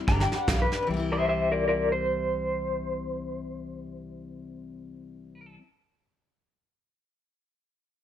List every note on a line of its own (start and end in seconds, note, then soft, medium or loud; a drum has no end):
0.08 0.31 G1 medium
0.08 0.32 G3 medium
0.08 0.32 D4 medium
0.08 0.32 G4 medium
0.08 0.31 B4 medium
0.08 0.21 A#5 loud
0.08 kick loud
0.08 snare soft
0.20 0.35 G5 medium
0.20 snare soft
0.32 0.47 D4 soft
0.32 0.48 G4 soft
0.32 0.48 B4 soft
0.32 0.48 F#5 medium
0.32 snare soft
0.47 0.71 B1 loud
0.47 0.71 G3 medium
0.47 0.72 D4 medium
0.47 0.71 G4 medium
0.47 0.70 B4 medium
0.47 0.61 F5 medium
0.47 kick loud
0.47 snare loud
0.47 hi-hat pedal medium
0.62 0.87 B4 medium
0.71 0.89 D4 soft
0.71 0.88 G4 soft
0.71 0.87 B4 soft
0.71 muted upright bass stroke medium
0.71 snare soft
0.82 5.56 C3 medium
0.87 5.55 C2 medium
0.87 5.58 E3 medium
0.87 5.60 G3 medium
0.94 5.62 C4 medium
0.94 5.63 E4 loud
0.99 5.65 C5 medium
1.12 1.27 C5 medium
1.12 1.28 E5 medium
1.29 1.51 C5 medium
1.29 1.52 E5 medium
1.52 1.66 A#4 medium
1.52 1.68 D5 medium
1.68 1.90 A#4 medium
1.68 1.92 D5 medium
1.92 5.55 C5 loud